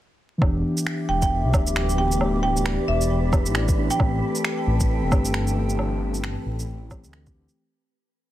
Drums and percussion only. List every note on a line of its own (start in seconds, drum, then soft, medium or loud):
0.42 kick loud
0.42 low woodblock soft
0.78 shaker medium
0.87 finger snap loud
1.22 kick medium
1.22 shaker medium
1.54 kick loud
1.54 low woodblock medium
1.54 shaker soft
1.67 shaker medium
1.76 finger snap medium
1.90 shaker soft
2.12 shaker medium
2.21 low woodblock soft
2.57 shaker medium
2.66 finger snap loud
3.01 shaker medium
3.33 kick loud
3.33 low woodblock medium
3.33 shaker soft
3.46 shaker medium
3.55 finger snap loud
3.69 kick loud
3.69 shaker soft
3.91 shaker medium
4.00 kick loud
4.00 low woodblock soft
4.36 shaker medium
4.44 finger snap loud
4.80 kick medium
4.80 shaker medium
5.12 kick loud
5.12 low woodblock medium
5.12 shaker soft
5.25 shaker medium
5.34 finger snap loud
5.48 shaker soft
5.70 shaker medium
5.79 low woodblock soft
6.15 shaker medium
6.24 finger snap loud
6.60 shaker medium
6.91 kick loud
6.91 low woodblock medium
6.91 shaker soft
7.04 shaker medium
7.13 finger snap loud
7.27 kick loud
7.27 shaker soft
7.49 shaker medium